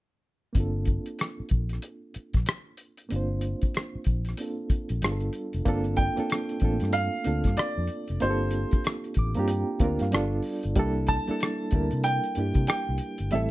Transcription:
0.53 G1 A#3 C4 D4, kick, closed hi-hat
0.58 F4 A4
0.85 kick, closed hi-hat
1.06 closed hi-hat
1.19 cross-stick, closed hi-hat
1.40 muted fingered electric bass stroke
1.49 A#1, kick, closed hi-hat
1.69 cross-stick, closed hi-hat
1.82 closed hi-hat
2.14 muted fingered electric bass stroke, closed hi-hat
2.34 A#1, kick, cross-stick, closed hi-hat
2.46 cross-stick, closed hi-hat
2.77 closed hi-hat
2.98 closed hi-hat
3.09 G1 A#3 C4 D4, closed hi-hat
3.14 F4 C5
3.41 closed hi-hat
3.62 kick, closed hi-hat
3.74 cross-stick, closed hi-hat
3.95 muted fingered electric bass stroke
4.04 A#1, kick, closed hi-hat
4.25 cross-stick, closed hi-hat
4.37 A#3 C4 D4 F4, closed hi-hat
4.41 A4
4.70 muted fingered electric bass stroke, kick, closed hi-hat
4.89 A#1, closed hi-hat
5.02 G1 G3 B3 D4 F4 G#4, cross-stick, closed hi-hat
5.12 A4
5.20 closed hi-hat
5.33 closed hi-hat
5.53 F1, closed hi-hat
5.65 G1 A#3 C4 D4 F4 A4, kick, closed hi-hat
5.84 closed hi-hat
5.96 G5, kick, closed hi-hat
6.16 A#3 C4 D4 F4 A4, muted fingered electric bass stroke, closed hi-hat
6.30 cross-stick, closed hi-hat
6.49 closed hi-hat
6.60 A1 A3 C4 D4 F4, kick, closed hi-hat
6.64 A#3 A4
6.80 G2, cross-stick, closed hi-hat
6.93 F5, closed hi-hat
7.24 D2 A#3 C4 D4 F4 A4, closed hi-hat
7.44 G2, kick, cross-stick, closed hi-hat
7.57 D5, muted fingered electric bass stroke, cross-stick, closed hi-hat
7.78 F2
7.87 closed hi-hat
8.08 F1, closed hi-hat
8.20 G1 A#3 C4 D4 F4 G4 C5, closed hi-hat
8.30 A4
8.51 closed hi-hat
8.71 muted fingered electric bass stroke, kick, closed hi-hat
8.84 cross-stick, closed hi-hat
9.04 closed hi-hat
9.14 A1, kick, closed hi-hat
9.19 D6
9.34 G2 A#3 C4 D4 F4 A#5, closed hi-hat
9.39 G4
9.48 G5, closed hi-hat
9.80 D2 A#3 C4 D4 F4, kick, closed hi-hat
9.84 A#4
9.99 G2 F5, cross-stick, closed hi-hat
10.11 G1 G3 B3 D4 F4 A4 D5, cross-stick, closed hi-hat
10.43 open hi-hat
10.63 G1, closed hi-hat
10.76 C2 G3 A#3 D4 E4 A4, kick, closed hi-hat
11.07 A5, kick, closed hi-hat
11.28 G3 A#3 D4 E4 A4, muted fingered electric bass stroke, closed hi-hat
11.40 cross-stick, closed hi-hat
11.71 D2 G3 A#3 D4 E4, kick, closed hi-hat
11.75 A#4
11.91 C3, closed hi-hat
12.04 G5, closed hi-hat
12.24 closed hi-hat
12.35 G2 G3 A#3 D4, closed hi-hat
12.39 E4 G4
12.54 C3, kick, closed hi-hat
12.67 G5, muted fingered electric bass stroke, cross-stick, closed hi-hat
12.89 C2
12.98 closed hi-hat
13.18 G1, closed hi-hat
13.31 A1 G3 A3 C4 E4 E5, closed hi-hat
13.35 A4

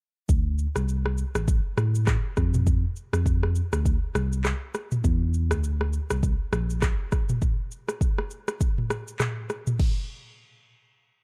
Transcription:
0.29 D2, kick, shaker
0.59 shaker
0.76 C2, cross-stick, shaker
0.89 shaker
1.06 cross-stick
1.18 shaker
1.35 A1, cross-stick, shaker
1.48 kick, shaker
1.77 A2, cross-stick, shaker
1.95 shaker
2.07 kick, cross-stick, clap, shaker
2.37 F2, kick, cross-stick, shaker
2.54 mid tom, shaker
2.67 kick, shaker
2.96 shaker
3.13 F2, cross-stick, shaker
3.26 kick, shaker
3.43 cross-stick
3.55 shaker
3.73 D2, cross-stick, shaker
3.85 kick, shaker
4.15 C2, cross-stick, shaker
4.33 shaker
4.45 cross-stick, clap, shaker
4.74 cross-stick, shaker
4.92 mid tom, shaker
5.04 E2, kick, shaker
5.34 shaker
5.51 D2, cross-stick, shaker
5.64 shaker
5.81 cross-stick
5.93 shaker
6.10 C2, cross-stick, shaker
6.23 kick, shaker
6.53 A#1, cross-stick, shaker
6.70 shaker
6.82 kick, cross-stick, clap, shaker
7.12 kick, cross-stick, shaker
7.29 mid tom, shaker
7.42 kick, shaker
7.71 shaker
7.88 cross-stick, shaker
8.01 kick, shaker
8.18 cross-stick
8.31 shaker
8.48 cross-stick, shaker
8.61 kick, shaker
8.78 mid tom
8.90 cross-stick, shaker
9.08 shaker
9.20 cross-stick, clap, mid tom, shaker
9.50 cross-stick, shaker
9.67 mid tom, shaker
9.79 kick, crash

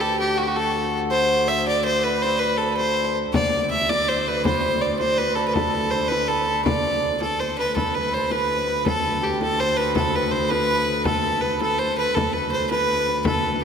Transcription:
Already playing: D2 G4 B4 D5
0.01 A4
0.20 G4
0.38 F#4
0.43 F#4 G4
0.48 F#4
0.56 A4
1.11 C5
1.48 E5
1.67 D5
1.85 C5
2.04 B4
2.22 C5
2.39 B4
2.44 B4
2.58 A4
2.62 A4
2.77 C5
3.04 C5
3.33 D2 D5, frame drum
3.53 frame drum
3.71 E5
3.89 D5, frame drum
4.08 C5
4.28 B4
4.45 C5, frame drum
4.62 C5, frame drum
4.81 D5
4.99 C5, frame drum
5.17 B4
5.35 A4
5.48 B4
5.53 A4, frame drum
5.74 B4, frame drum
5.91 C5
6.08 B4, frame drum
6.28 A4
6.47 C5
6.65 D5, frame drum
6.85 frame drum
7.21 A4, frame drum
7.40 C5
7.59 B4
7.76 D2 A4, frame drum
7.95 B4
8.12 C5, frame drum
8.30 B4, frame drum
8.68 B4
8.86 A4, frame drum
9.21 G4
9.40 A4, frame drum
9.58 C5
9.76 B4
9.95 A4, frame drum
10.13 B4
10.31 C5, frame drum
10.48 B4, frame drum
11.05 A4, frame drum
11.24 A4
11.42 B4
11.60 A4, frame drum
11.79 C5, frame drum
11.98 B4
12.15 D2 A4, frame drum
12.33 B4
12.52 C5, frame drum
12.71 B4, frame drum
13.09 B4
13.25 A4, frame drum
13.44 A4

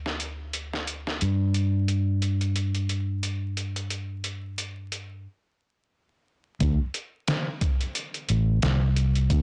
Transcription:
Already playing: D2
0.06 snare
0.20 closed hi-hat
0.53 closed hi-hat
0.74 snare
0.87 closed hi-hat
1.07 snare
1.21 G2, closed hi-hat
1.54 closed hi-hat
1.88 closed hi-hat
2.22 closed hi-hat
2.41 closed hi-hat
2.56 closed hi-hat
2.75 closed hi-hat
2.89 closed hi-hat
3.23 closed hi-hat
3.57 closed hi-hat
3.76 closed hi-hat
3.90 closed hi-hat
4.24 closed hi-hat
4.58 closed hi-hat
4.92 closed hi-hat
6.60 D2, kick, closed hi-hat
6.94 closed hi-hat
7.28 snare, closed hi-hat
7.61 kick, closed hi-hat
7.81 closed hi-hat
7.95 closed hi-hat
8.14 closed hi-hat
8.29 A1, closed hi-hat
8.62 C2, snare, closed hi-hat
8.96 closed hi-hat
9.16 closed hi-hat
9.30 D2, kick, closed hi-hat

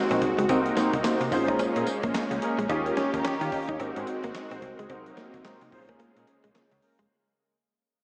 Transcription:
Already playing: G#3 C4 D#4 F#4 A#4
0.11 A#1 C4, closed hi-hat
0.22 C2, muted clean electric guitar stroke, kick, closed hi-hat
0.38 C#2 G#3, closed hi-hat
0.49 C2 C3 A#3 C4 D#4 F#4 A#4 C5, kick, closed hi-hat, tambourine
0.66 closed hi-hat
0.77 A#3 C4 D#4 A#4 C5, snare, closed hi-hat, tambourine
0.94 C2, muted clean electric guitar stroke, kick, closed hi-hat
1.04 C3 A#3 C4 D#4 A#4 C5, snare, clap, closed hi-hat, tambourine
1.21 C3, muted clean electric guitar stroke, closed hi-hat
1.31 A#1 G#3 C#4 F4 G#4 C5, kick, open hi-hat, tambourine
1.48 A#3 C#4 D#4 G#4 A#4, kick, closed hi-hat
1.59 C#4, closed hi-hat, tambourine
1.76 A#2 A#3 C#4 G#4 A#4, closed hi-hat
1.87 muted clean electric guitar stroke, closed hi-hat, tambourine
2.03 A#1 A#3, kick, closed hi-hat
2.14 C#2 A#3, snare, clap, closed hi-hat, tambourine
2.31 C#2, muted clean electric guitar stroke, closed hi-hat
2.42 A#3 C#4 G#4 A#4, closed hi-hat
2.58 A#1 G#3, closed hi-hat
2.69 D#2 D#3 C#4 D#4 F4 G4 A#4 C#5, kick, closed hi-hat
2.86 closed hi-hat
2.97 C#4 D#4 G4 C#5, snare, closed hi-hat
3.14 D#2 A#5, muted clean electric guitar stroke, kick, closed hi-hat
3.24 C#4 D#4 G4 C#5 G5, snare, clap, closed hi-hat
3.41 D#3 F5, muted clean electric guitar stroke, closed hi-hat
3.52 D#5, kick, open hi-hat
3.68 D#2 C#4 D#4 G4 C#5, kick, closed hi-hat
3.78 G#1 G#3 C4 D#4 F#4 A#4, closed hi-hat
3.96 G#2 C4 F#4 G#4 C5, muted clean electric guitar stroke, closed hi-hat
4.07 closed hi-hat
4.24 G#1 A#3, closed hi-hat
4.35 D#5, snare, clap, closed hi-hat
4.51 A#1 C4 C5, closed hi-hat
4.62 C2 A#4, muted clean electric guitar stroke, kick, closed hi-hat
4.79 C#2 G#3 G#4, closed hi-hat
4.89 C2 C3 F#3 A#3 C4 D#4 F#4 A#4 C5, kick, closed hi-hat
5.06 closed hi-hat
5.17 A#3 C4 D#4 A#4 C5, snare, closed hi-hat
5.34 C2, muted clean electric guitar stroke, kick, closed hi-hat
5.45 C3 G#3 C4 D#4 A#4 C5, snare, clap, closed hi-hat
5.61 C3, muted clean electric guitar stroke, closed hi-hat
5.71 A#1 C#3 G#3 C4 F4 G#4 C5, kick, open hi-hat
5.78 C#4
5.89 A#3 C#4 G#4 A#4, kick, closed hi-hat
6.00 A#3, closed hi-hat
6.16 A#2 A#3 C#4 G#4 A#4, closed hi-hat
6.27 muted clean electric guitar stroke, closed hi-hat
6.44 A#1 G#3, closed hi-hat
6.55 A#3, snare, clap, closed hi-hat
6.71 C#2, muted clean electric guitar stroke, closed hi-hat
6.82 A#3 C#4 G#4 A#4, open hi-hat
6.99 F1 G#3, closed hi-hat

